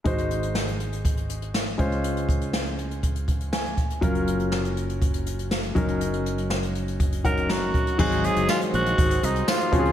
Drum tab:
CC |----------------|----------------|----------------|----------------|
HH |xxxx-xxxxxxx-xxx|xxxx-xxxxxxx-xxx|xxxx-xxxxxxx-xxx|xxxx-xxxxxxx-xxx|
TB |----------------|----------------|----------------|----------------|
SD |----o-------o---|----o-------o---|----o-------o---|----o-------o---|
BD |o-------o-----o-|--o-----o-o---o-|o-------o-----o-|--------o-o---o-|

CC |x---------------|
HH |-xxx-xxxxxxx-xxx|
TB |----x-------x---|
SD |----o-------o---|
BD |o-------o-----o-|